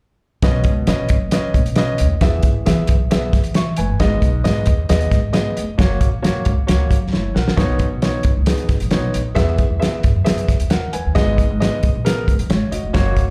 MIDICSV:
0, 0, Header, 1, 4, 480
1, 0, Start_track
1, 0, Key_signature, 5, "major"
1, 0, Tempo, 446761
1, 464, Time_signature, 4, 2, 24, 8
1, 14294, End_track
2, 0, Start_track
2, 0, Title_t, "Upright piano"
2, 0, Program_c, 0, 0
2, 460, Note_on_c, 0, 61, 75
2, 463, Note_on_c, 0, 71, 75
2, 465, Note_on_c, 0, 47, 66
2, 465, Note_on_c, 0, 75, 81
2, 762, Note_off_c, 0, 61, 0
2, 763, Note_off_c, 0, 71, 0
2, 765, Note_off_c, 0, 75, 0
2, 941, Note_on_c, 0, 61, 76
2, 944, Note_on_c, 0, 71, 68
2, 946, Note_on_c, 0, 75, 80
2, 1139, Note_off_c, 0, 47, 0
2, 1242, Note_off_c, 0, 61, 0
2, 1244, Note_off_c, 0, 71, 0
2, 1245, Note_off_c, 0, 75, 0
2, 1425, Note_on_c, 0, 61, 76
2, 1427, Note_on_c, 0, 71, 68
2, 1427, Note_on_c, 0, 75, 80
2, 1724, Note_off_c, 0, 61, 0
2, 1724, Note_off_c, 0, 71, 0
2, 1725, Note_off_c, 0, 75, 0
2, 1904, Note_on_c, 0, 71, 72
2, 1906, Note_on_c, 0, 61, 76
2, 1907, Note_on_c, 0, 75, 92
2, 2203, Note_off_c, 0, 61, 0
2, 2203, Note_off_c, 0, 71, 0
2, 2204, Note_off_c, 0, 75, 0
2, 2377, Note_on_c, 0, 52, 72
2, 2380, Note_on_c, 0, 76, 85
2, 2381, Note_on_c, 0, 59, 78
2, 2382, Note_on_c, 0, 68, 71
2, 2680, Note_off_c, 0, 76, 0
2, 2681, Note_off_c, 0, 59, 0
2, 2681, Note_off_c, 0, 68, 0
2, 2854, Note_on_c, 0, 68, 74
2, 2856, Note_on_c, 0, 59, 78
2, 2863, Note_on_c, 0, 76, 87
2, 3054, Note_off_c, 0, 52, 0
2, 3157, Note_off_c, 0, 68, 0
2, 3158, Note_off_c, 0, 59, 0
2, 3161, Note_off_c, 0, 76, 0
2, 3339, Note_on_c, 0, 76, 86
2, 3340, Note_on_c, 0, 59, 77
2, 3342, Note_on_c, 0, 68, 69
2, 3639, Note_off_c, 0, 59, 0
2, 3639, Note_off_c, 0, 76, 0
2, 3640, Note_off_c, 0, 68, 0
2, 3818, Note_on_c, 0, 85, 62
2, 3830, Note_on_c, 0, 76, 53
2, 4045, Note_off_c, 0, 85, 0
2, 4051, Note_off_c, 0, 76, 0
2, 4056, Note_on_c, 0, 80, 58
2, 4062, Note_on_c, 0, 71, 53
2, 4292, Note_on_c, 0, 59, 82
2, 4296, Note_on_c, 0, 75, 96
2, 4300, Note_on_c, 0, 44, 72
2, 4301, Note_on_c, 0, 68, 71
2, 4512, Note_off_c, 0, 80, 0
2, 4515, Note_off_c, 0, 71, 0
2, 4595, Note_off_c, 0, 59, 0
2, 4597, Note_off_c, 0, 75, 0
2, 4600, Note_off_c, 0, 68, 0
2, 4772, Note_on_c, 0, 75, 93
2, 4773, Note_on_c, 0, 68, 70
2, 4774, Note_on_c, 0, 59, 76
2, 4974, Note_off_c, 0, 44, 0
2, 5075, Note_off_c, 0, 68, 0
2, 5075, Note_off_c, 0, 75, 0
2, 5076, Note_off_c, 0, 59, 0
2, 5258, Note_on_c, 0, 59, 80
2, 5258, Note_on_c, 0, 68, 69
2, 5258, Note_on_c, 0, 75, 89
2, 5557, Note_off_c, 0, 59, 0
2, 5558, Note_off_c, 0, 68, 0
2, 5558, Note_off_c, 0, 75, 0
2, 5722, Note_on_c, 0, 59, 78
2, 5723, Note_on_c, 0, 68, 70
2, 5727, Note_on_c, 0, 75, 88
2, 6029, Note_off_c, 0, 59, 0
2, 6030, Note_off_c, 0, 68, 0
2, 6032, Note_off_c, 0, 75, 0
2, 6206, Note_on_c, 0, 58, 80
2, 6209, Note_on_c, 0, 66, 70
2, 6215, Note_on_c, 0, 73, 85
2, 6512, Note_off_c, 0, 58, 0
2, 6513, Note_off_c, 0, 66, 0
2, 6516, Note_off_c, 0, 73, 0
2, 6687, Note_on_c, 0, 66, 69
2, 6688, Note_on_c, 0, 73, 83
2, 6689, Note_on_c, 0, 58, 76
2, 6992, Note_off_c, 0, 66, 0
2, 6993, Note_off_c, 0, 58, 0
2, 6993, Note_off_c, 0, 73, 0
2, 7166, Note_on_c, 0, 58, 73
2, 7167, Note_on_c, 0, 66, 69
2, 7169, Note_on_c, 0, 73, 83
2, 7472, Note_off_c, 0, 58, 0
2, 7472, Note_off_c, 0, 66, 0
2, 7473, Note_off_c, 0, 73, 0
2, 7654, Note_on_c, 0, 73, 58
2, 7662, Note_on_c, 0, 64, 51
2, 7883, Note_off_c, 0, 73, 0
2, 7887, Note_off_c, 0, 64, 0
2, 7891, Note_on_c, 0, 78, 56
2, 7899, Note_on_c, 0, 70, 51
2, 8128, Note_on_c, 0, 47, 68
2, 8131, Note_on_c, 0, 59, 102
2, 8133, Note_on_c, 0, 63, 94
2, 8137, Note_on_c, 0, 73, 106
2, 8350, Note_off_c, 0, 78, 0
2, 8354, Note_off_c, 0, 70, 0
2, 8435, Note_off_c, 0, 59, 0
2, 8436, Note_off_c, 0, 63, 0
2, 8438, Note_off_c, 0, 73, 0
2, 8619, Note_on_c, 0, 59, 71
2, 8620, Note_on_c, 0, 73, 86
2, 8621, Note_on_c, 0, 63, 66
2, 8810, Note_off_c, 0, 47, 0
2, 8919, Note_off_c, 0, 59, 0
2, 8920, Note_off_c, 0, 63, 0
2, 8920, Note_off_c, 0, 73, 0
2, 9097, Note_on_c, 0, 59, 70
2, 9097, Note_on_c, 0, 63, 66
2, 9099, Note_on_c, 0, 68, 74
2, 9399, Note_off_c, 0, 59, 0
2, 9399, Note_off_c, 0, 63, 0
2, 9400, Note_off_c, 0, 68, 0
2, 9569, Note_on_c, 0, 63, 73
2, 9570, Note_on_c, 0, 73, 84
2, 9571, Note_on_c, 0, 59, 81
2, 9875, Note_off_c, 0, 63, 0
2, 9876, Note_off_c, 0, 59, 0
2, 9876, Note_off_c, 0, 73, 0
2, 10042, Note_on_c, 0, 59, 100
2, 10044, Note_on_c, 0, 52, 63
2, 10049, Note_on_c, 0, 68, 94
2, 10049, Note_on_c, 0, 76, 110
2, 10352, Note_off_c, 0, 59, 0
2, 10355, Note_off_c, 0, 76, 0
2, 10356, Note_off_c, 0, 68, 0
2, 10524, Note_on_c, 0, 76, 84
2, 10525, Note_on_c, 0, 59, 75
2, 10528, Note_on_c, 0, 68, 66
2, 10730, Note_off_c, 0, 52, 0
2, 10834, Note_off_c, 0, 59, 0
2, 10834, Note_off_c, 0, 76, 0
2, 10836, Note_off_c, 0, 68, 0
2, 11006, Note_on_c, 0, 59, 75
2, 11006, Note_on_c, 0, 68, 73
2, 11007, Note_on_c, 0, 76, 83
2, 11315, Note_off_c, 0, 59, 0
2, 11315, Note_off_c, 0, 68, 0
2, 11316, Note_off_c, 0, 76, 0
2, 11497, Note_on_c, 0, 78, 67
2, 11500, Note_on_c, 0, 70, 55
2, 11728, Note_off_c, 0, 78, 0
2, 11729, Note_off_c, 0, 70, 0
2, 11741, Note_on_c, 0, 80, 60
2, 11752, Note_on_c, 0, 71, 50
2, 11978, Note_on_c, 0, 59, 99
2, 11979, Note_on_c, 0, 68, 95
2, 11979, Note_on_c, 0, 75, 110
2, 11983, Note_on_c, 0, 44, 67
2, 12198, Note_off_c, 0, 80, 0
2, 12205, Note_off_c, 0, 71, 0
2, 12282, Note_off_c, 0, 59, 0
2, 12283, Note_off_c, 0, 68, 0
2, 12283, Note_off_c, 0, 75, 0
2, 12466, Note_on_c, 0, 59, 79
2, 12466, Note_on_c, 0, 68, 69
2, 12467, Note_on_c, 0, 75, 91
2, 12661, Note_off_c, 0, 44, 0
2, 12766, Note_off_c, 0, 59, 0
2, 12767, Note_off_c, 0, 68, 0
2, 12767, Note_off_c, 0, 75, 0
2, 12942, Note_on_c, 0, 68, 69
2, 12943, Note_on_c, 0, 70, 85
2, 12944, Note_on_c, 0, 59, 77
2, 13245, Note_off_c, 0, 68, 0
2, 13245, Note_off_c, 0, 70, 0
2, 13246, Note_off_c, 0, 59, 0
2, 13428, Note_on_c, 0, 73, 62
2, 13655, Note_off_c, 0, 73, 0
2, 13662, Note_on_c, 0, 75, 59
2, 13669, Note_on_c, 0, 66, 52
2, 13884, Note_off_c, 0, 66, 0
2, 13895, Note_on_c, 0, 58, 93
2, 13901, Note_on_c, 0, 66, 98
2, 13902, Note_on_c, 0, 73, 110
2, 14121, Note_off_c, 0, 75, 0
2, 14202, Note_off_c, 0, 58, 0
2, 14205, Note_off_c, 0, 66, 0
2, 14206, Note_off_c, 0, 73, 0
2, 14294, End_track
3, 0, Start_track
3, 0, Title_t, "Upright bass"
3, 0, Program_c, 1, 32
3, 463, Note_on_c, 1, 35, 85
3, 701, Note_off_c, 1, 35, 0
3, 701, Note_on_c, 1, 37, 83
3, 875, Note_off_c, 1, 37, 0
3, 946, Note_on_c, 1, 47, 96
3, 1118, Note_off_c, 1, 47, 0
3, 1189, Note_on_c, 1, 30, 83
3, 1360, Note_off_c, 1, 30, 0
3, 1423, Note_on_c, 1, 30, 79
3, 1662, Note_on_c, 1, 47, 87
3, 1678, Note_off_c, 1, 30, 0
3, 2156, Note_on_c, 1, 39, 89
3, 2172, Note_off_c, 1, 47, 0
3, 2323, Note_off_c, 1, 39, 0
3, 2379, Note_on_c, 1, 40, 88
3, 2553, Note_off_c, 1, 40, 0
3, 2616, Note_on_c, 1, 44, 82
3, 2790, Note_off_c, 1, 44, 0
3, 2872, Note_on_c, 1, 52, 100
3, 3040, Note_off_c, 1, 52, 0
3, 3112, Note_on_c, 1, 35, 82
3, 3280, Note_off_c, 1, 35, 0
3, 3345, Note_on_c, 1, 35, 81
3, 3515, Note_off_c, 1, 35, 0
3, 3580, Note_on_c, 1, 52, 93
3, 4069, Note_on_c, 1, 31, 88
3, 4085, Note_off_c, 1, 52, 0
3, 4238, Note_off_c, 1, 31, 0
3, 4303, Note_on_c, 1, 32, 91
3, 4474, Note_off_c, 1, 32, 0
3, 4534, Note_on_c, 1, 35, 87
3, 4708, Note_off_c, 1, 35, 0
3, 4776, Note_on_c, 1, 44, 99
3, 4950, Note_off_c, 1, 44, 0
3, 5023, Note_on_c, 1, 39, 82
3, 5194, Note_off_c, 1, 39, 0
3, 5269, Note_on_c, 1, 39, 94
3, 5437, Note_off_c, 1, 39, 0
3, 5502, Note_on_c, 1, 44, 90
3, 5847, Note_off_c, 1, 44, 0
3, 5992, Note_on_c, 1, 29, 85
3, 6160, Note_off_c, 1, 29, 0
3, 6223, Note_on_c, 1, 30, 92
3, 6394, Note_off_c, 1, 30, 0
3, 6459, Note_on_c, 1, 34, 85
3, 6631, Note_off_c, 1, 34, 0
3, 6710, Note_on_c, 1, 42, 83
3, 6878, Note_off_c, 1, 42, 0
3, 6949, Note_on_c, 1, 37, 91
3, 7118, Note_off_c, 1, 37, 0
3, 7186, Note_on_c, 1, 37, 94
3, 7356, Note_off_c, 1, 37, 0
3, 7419, Note_on_c, 1, 42, 81
3, 7668, Note_on_c, 1, 30, 81
3, 7684, Note_off_c, 1, 42, 0
3, 7837, Note_off_c, 1, 30, 0
3, 7904, Note_on_c, 1, 34, 78
3, 7988, Note_off_c, 1, 34, 0
3, 8140, Note_on_c, 1, 35, 91
3, 8399, Note_off_c, 1, 35, 0
3, 8516, Note_on_c, 1, 35, 71
3, 8683, Note_off_c, 1, 35, 0
3, 8861, Note_on_c, 1, 39, 87
3, 8946, Note_off_c, 1, 39, 0
3, 8992, Note_on_c, 1, 37, 73
3, 9161, Note_off_c, 1, 37, 0
3, 9340, Note_on_c, 1, 35, 73
3, 9426, Note_off_c, 1, 35, 0
3, 9473, Note_on_c, 1, 34, 81
3, 9555, Note_off_c, 1, 34, 0
3, 9585, Note_on_c, 1, 35, 83
3, 9757, Note_off_c, 1, 35, 0
3, 9829, Note_on_c, 1, 34, 83
3, 9999, Note_off_c, 1, 34, 0
3, 10066, Note_on_c, 1, 40, 88
3, 10324, Note_off_c, 1, 40, 0
3, 10422, Note_on_c, 1, 40, 80
3, 10595, Note_off_c, 1, 40, 0
3, 10788, Note_on_c, 1, 44, 78
3, 10872, Note_off_c, 1, 44, 0
3, 10913, Note_on_c, 1, 42, 76
3, 11083, Note_off_c, 1, 42, 0
3, 11268, Note_on_c, 1, 40, 79
3, 11353, Note_off_c, 1, 40, 0
3, 11398, Note_on_c, 1, 39, 75
3, 11566, Note_off_c, 1, 39, 0
3, 11755, Note_on_c, 1, 40, 88
3, 11837, Note_off_c, 1, 40, 0
3, 11889, Note_on_c, 1, 39, 77
3, 11966, Note_off_c, 1, 39, 0
3, 11995, Note_on_c, 1, 32, 87
3, 12251, Note_off_c, 1, 32, 0
3, 12357, Note_on_c, 1, 32, 86
3, 12526, Note_off_c, 1, 32, 0
3, 12722, Note_on_c, 1, 35, 95
3, 12803, Note_off_c, 1, 35, 0
3, 12842, Note_on_c, 1, 34, 80
3, 13009, Note_off_c, 1, 34, 0
3, 13194, Note_on_c, 1, 32, 86
3, 13278, Note_off_c, 1, 32, 0
3, 13316, Note_on_c, 1, 30, 85
3, 13399, Note_off_c, 1, 30, 0
3, 13425, Note_on_c, 1, 32, 84
3, 13512, Note_off_c, 1, 32, 0
3, 13666, Note_on_c, 1, 28, 77
3, 13753, Note_off_c, 1, 28, 0
3, 13787, Note_on_c, 1, 29, 73
3, 13874, Note_off_c, 1, 29, 0
3, 13915, Note_on_c, 1, 30, 97
3, 14173, Note_off_c, 1, 30, 0
3, 14294, End_track
4, 0, Start_track
4, 0, Title_t, "Drums"
4, 456, Note_on_c, 9, 42, 83
4, 457, Note_on_c, 9, 36, 106
4, 466, Note_on_c, 9, 38, 119
4, 563, Note_off_c, 9, 42, 0
4, 565, Note_off_c, 9, 36, 0
4, 573, Note_off_c, 9, 38, 0
4, 684, Note_on_c, 9, 42, 72
4, 695, Note_on_c, 9, 36, 81
4, 792, Note_off_c, 9, 42, 0
4, 802, Note_off_c, 9, 36, 0
4, 935, Note_on_c, 9, 42, 87
4, 940, Note_on_c, 9, 38, 96
4, 1042, Note_off_c, 9, 42, 0
4, 1048, Note_off_c, 9, 38, 0
4, 1167, Note_on_c, 9, 42, 69
4, 1182, Note_on_c, 9, 36, 90
4, 1274, Note_off_c, 9, 42, 0
4, 1290, Note_off_c, 9, 36, 0
4, 1411, Note_on_c, 9, 42, 102
4, 1420, Note_on_c, 9, 38, 96
4, 1518, Note_off_c, 9, 42, 0
4, 1528, Note_off_c, 9, 38, 0
4, 1659, Note_on_c, 9, 36, 84
4, 1664, Note_on_c, 9, 42, 62
4, 1766, Note_off_c, 9, 36, 0
4, 1771, Note_off_c, 9, 42, 0
4, 1782, Note_on_c, 9, 42, 50
4, 1886, Note_off_c, 9, 42, 0
4, 1886, Note_on_c, 9, 42, 86
4, 1894, Note_on_c, 9, 38, 112
4, 1994, Note_off_c, 9, 42, 0
4, 2002, Note_off_c, 9, 38, 0
4, 2129, Note_on_c, 9, 42, 83
4, 2237, Note_off_c, 9, 42, 0
4, 2374, Note_on_c, 9, 42, 91
4, 2378, Note_on_c, 9, 36, 104
4, 2384, Note_on_c, 9, 38, 112
4, 2482, Note_off_c, 9, 42, 0
4, 2485, Note_off_c, 9, 36, 0
4, 2492, Note_off_c, 9, 38, 0
4, 2606, Note_on_c, 9, 42, 65
4, 2614, Note_on_c, 9, 36, 88
4, 2713, Note_off_c, 9, 42, 0
4, 2722, Note_off_c, 9, 36, 0
4, 2861, Note_on_c, 9, 42, 90
4, 2867, Note_on_c, 9, 38, 92
4, 2969, Note_off_c, 9, 42, 0
4, 2974, Note_off_c, 9, 38, 0
4, 3088, Note_on_c, 9, 42, 74
4, 3104, Note_on_c, 9, 36, 85
4, 3195, Note_off_c, 9, 42, 0
4, 3212, Note_off_c, 9, 36, 0
4, 3342, Note_on_c, 9, 42, 102
4, 3351, Note_on_c, 9, 38, 113
4, 3449, Note_off_c, 9, 42, 0
4, 3459, Note_off_c, 9, 38, 0
4, 3580, Note_on_c, 9, 36, 79
4, 3580, Note_on_c, 9, 42, 61
4, 3585, Note_on_c, 9, 38, 33
4, 3687, Note_off_c, 9, 36, 0
4, 3688, Note_off_c, 9, 42, 0
4, 3693, Note_off_c, 9, 38, 0
4, 3693, Note_on_c, 9, 42, 51
4, 3800, Note_off_c, 9, 42, 0
4, 3808, Note_on_c, 9, 42, 74
4, 3816, Note_on_c, 9, 38, 102
4, 3915, Note_off_c, 9, 42, 0
4, 3923, Note_off_c, 9, 38, 0
4, 4045, Note_on_c, 9, 42, 78
4, 4152, Note_off_c, 9, 42, 0
4, 4294, Note_on_c, 9, 42, 88
4, 4298, Note_on_c, 9, 36, 105
4, 4304, Note_on_c, 9, 38, 107
4, 4401, Note_off_c, 9, 42, 0
4, 4405, Note_off_c, 9, 36, 0
4, 4411, Note_off_c, 9, 38, 0
4, 4535, Note_on_c, 9, 36, 83
4, 4535, Note_on_c, 9, 42, 73
4, 4642, Note_off_c, 9, 36, 0
4, 4642, Note_off_c, 9, 42, 0
4, 4783, Note_on_c, 9, 42, 90
4, 4788, Note_on_c, 9, 38, 98
4, 4890, Note_off_c, 9, 42, 0
4, 4896, Note_off_c, 9, 38, 0
4, 5002, Note_on_c, 9, 42, 75
4, 5019, Note_on_c, 9, 36, 99
4, 5110, Note_off_c, 9, 42, 0
4, 5126, Note_off_c, 9, 36, 0
4, 5255, Note_on_c, 9, 42, 102
4, 5265, Note_on_c, 9, 38, 97
4, 5363, Note_off_c, 9, 42, 0
4, 5372, Note_off_c, 9, 38, 0
4, 5378, Note_on_c, 9, 42, 48
4, 5485, Note_off_c, 9, 42, 0
4, 5496, Note_on_c, 9, 36, 88
4, 5499, Note_on_c, 9, 42, 60
4, 5504, Note_on_c, 9, 38, 34
4, 5603, Note_off_c, 9, 36, 0
4, 5607, Note_off_c, 9, 42, 0
4, 5612, Note_off_c, 9, 38, 0
4, 5732, Note_on_c, 9, 42, 79
4, 5740, Note_on_c, 9, 38, 100
4, 5840, Note_off_c, 9, 42, 0
4, 5848, Note_off_c, 9, 38, 0
4, 5982, Note_on_c, 9, 42, 74
4, 6090, Note_off_c, 9, 42, 0
4, 6218, Note_on_c, 9, 36, 109
4, 6226, Note_on_c, 9, 42, 83
4, 6236, Note_on_c, 9, 38, 111
4, 6326, Note_off_c, 9, 36, 0
4, 6333, Note_off_c, 9, 42, 0
4, 6343, Note_off_c, 9, 38, 0
4, 6455, Note_on_c, 9, 42, 69
4, 6456, Note_on_c, 9, 36, 88
4, 6562, Note_off_c, 9, 42, 0
4, 6563, Note_off_c, 9, 36, 0
4, 6709, Note_on_c, 9, 42, 85
4, 6714, Note_on_c, 9, 38, 95
4, 6816, Note_off_c, 9, 42, 0
4, 6822, Note_off_c, 9, 38, 0
4, 6932, Note_on_c, 9, 42, 74
4, 6944, Note_on_c, 9, 36, 85
4, 7039, Note_off_c, 9, 42, 0
4, 7051, Note_off_c, 9, 36, 0
4, 7182, Note_on_c, 9, 42, 100
4, 7191, Note_on_c, 9, 38, 103
4, 7289, Note_off_c, 9, 42, 0
4, 7299, Note_off_c, 9, 38, 0
4, 7420, Note_on_c, 9, 36, 80
4, 7429, Note_on_c, 9, 42, 67
4, 7528, Note_off_c, 9, 36, 0
4, 7537, Note_off_c, 9, 42, 0
4, 7667, Note_on_c, 9, 38, 50
4, 7775, Note_off_c, 9, 38, 0
4, 7906, Note_on_c, 9, 38, 81
4, 8014, Note_off_c, 9, 38, 0
4, 8034, Note_on_c, 9, 38, 89
4, 8139, Note_on_c, 9, 36, 103
4, 8141, Note_off_c, 9, 38, 0
4, 8141, Note_on_c, 9, 42, 76
4, 8152, Note_on_c, 9, 38, 108
4, 8247, Note_off_c, 9, 36, 0
4, 8249, Note_off_c, 9, 42, 0
4, 8259, Note_off_c, 9, 38, 0
4, 8371, Note_on_c, 9, 42, 63
4, 8377, Note_on_c, 9, 36, 82
4, 8479, Note_off_c, 9, 42, 0
4, 8484, Note_off_c, 9, 36, 0
4, 8618, Note_on_c, 9, 42, 83
4, 8624, Note_on_c, 9, 38, 92
4, 8726, Note_off_c, 9, 42, 0
4, 8731, Note_off_c, 9, 38, 0
4, 8845, Note_on_c, 9, 42, 68
4, 8861, Note_on_c, 9, 36, 91
4, 8952, Note_off_c, 9, 42, 0
4, 8968, Note_off_c, 9, 36, 0
4, 9091, Note_on_c, 9, 42, 102
4, 9101, Note_on_c, 9, 38, 101
4, 9199, Note_off_c, 9, 42, 0
4, 9208, Note_off_c, 9, 38, 0
4, 9213, Note_on_c, 9, 42, 44
4, 9321, Note_off_c, 9, 42, 0
4, 9333, Note_on_c, 9, 42, 60
4, 9338, Note_on_c, 9, 36, 82
4, 9338, Note_on_c, 9, 38, 34
4, 9441, Note_off_c, 9, 42, 0
4, 9445, Note_off_c, 9, 36, 0
4, 9446, Note_off_c, 9, 38, 0
4, 9456, Note_on_c, 9, 42, 55
4, 9563, Note_off_c, 9, 42, 0
4, 9569, Note_on_c, 9, 42, 73
4, 9577, Note_on_c, 9, 38, 100
4, 9676, Note_off_c, 9, 42, 0
4, 9684, Note_off_c, 9, 38, 0
4, 9820, Note_on_c, 9, 42, 76
4, 9928, Note_off_c, 9, 42, 0
4, 10060, Note_on_c, 9, 42, 87
4, 10061, Note_on_c, 9, 36, 105
4, 10071, Note_on_c, 9, 38, 110
4, 10168, Note_off_c, 9, 36, 0
4, 10168, Note_off_c, 9, 42, 0
4, 10178, Note_off_c, 9, 38, 0
4, 10296, Note_on_c, 9, 42, 65
4, 10300, Note_on_c, 9, 36, 84
4, 10404, Note_off_c, 9, 42, 0
4, 10407, Note_off_c, 9, 36, 0
4, 10553, Note_on_c, 9, 42, 81
4, 10558, Note_on_c, 9, 38, 90
4, 10660, Note_off_c, 9, 42, 0
4, 10666, Note_off_c, 9, 38, 0
4, 10780, Note_on_c, 9, 42, 71
4, 10789, Note_on_c, 9, 36, 87
4, 10887, Note_off_c, 9, 42, 0
4, 10897, Note_off_c, 9, 36, 0
4, 11024, Note_on_c, 9, 42, 107
4, 11034, Note_on_c, 9, 38, 97
4, 11132, Note_off_c, 9, 42, 0
4, 11141, Note_off_c, 9, 38, 0
4, 11148, Note_on_c, 9, 42, 48
4, 11256, Note_off_c, 9, 42, 0
4, 11265, Note_on_c, 9, 36, 80
4, 11269, Note_on_c, 9, 42, 60
4, 11274, Note_on_c, 9, 38, 32
4, 11373, Note_off_c, 9, 36, 0
4, 11377, Note_off_c, 9, 42, 0
4, 11382, Note_off_c, 9, 38, 0
4, 11386, Note_on_c, 9, 42, 53
4, 11493, Note_off_c, 9, 42, 0
4, 11497, Note_on_c, 9, 42, 83
4, 11506, Note_on_c, 9, 38, 104
4, 11605, Note_off_c, 9, 42, 0
4, 11613, Note_off_c, 9, 38, 0
4, 11743, Note_on_c, 9, 42, 73
4, 11851, Note_off_c, 9, 42, 0
4, 11989, Note_on_c, 9, 36, 104
4, 11994, Note_on_c, 9, 42, 81
4, 12004, Note_on_c, 9, 38, 103
4, 12097, Note_off_c, 9, 36, 0
4, 12102, Note_off_c, 9, 42, 0
4, 12112, Note_off_c, 9, 38, 0
4, 12229, Note_on_c, 9, 36, 80
4, 12235, Note_on_c, 9, 42, 65
4, 12336, Note_off_c, 9, 36, 0
4, 12342, Note_off_c, 9, 42, 0
4, 12482, Note_on_c, 9, 42, 82
4, 12488, Note_on_c, 9, 38, 91
4, 12590, Note_off_c, 9, 42, 0
4, 12595, Note_off_c, 9, 38, 0
4, 12708, Note_on_c, 9, 42, 66
4, 12716, Note_on_c, 9, 36, 86
4, 12816, Note_off_c, 9, 42, 0
4, 12823, Note_off_c, 9, 36, 0
4, 12958, Note_on_c, 9, 42, 103
4, 12967, Note_on_c, 9, 38, 99
4, 13065, Note_off_c, 9, 42, 0
4, 13075, Note_off_c, 9, 38, 0
4, 13192, Note_on_c, 9, 36, 78
4, 13200, Note_on_c, 9, 42, 63
4, 13300, Note_off_c, 9, 36, 0
4, 13307, Note_off_c, 9, 42, 0
4, 13313, Note_on_c, 9, 42, 54
4, 13420, Note_off_c, 9, 42, 0
4, 13428, Note_on_c, 9, 42, 76
4, 13436, Note_on_c, 9, 38, 103
4, 13535, Note_off_c, 9, 42, 0
4, 13543, Note_off_c, 9, 38, 0
4, 13670, Note_on_c, 9, 42, 76
4, 13777, Note_off_c, 9, 42, 0
4, 13908, Note_on_c, 9, 42, 80
4, 13910, Note_on_c, 9, 36, 108
4, 13918, Note_on_c, 9, 38, 115
4, 14015, Note_off_c, 9, 42, 0
4, 14017, Note_off_c, 9, 36, 0
4, 14025, Note_off_c, 9, 38, 0
4, 14145, Note_on_c, 9, 42, 68
4, 14146, Note_on_c, 9, 36, 80
4, 14252, Note_off_c, 9, 42, 0
4, 14253, Note_off_c, 9, 36, 0
4, 14294, End_track
0, 0, End_of_file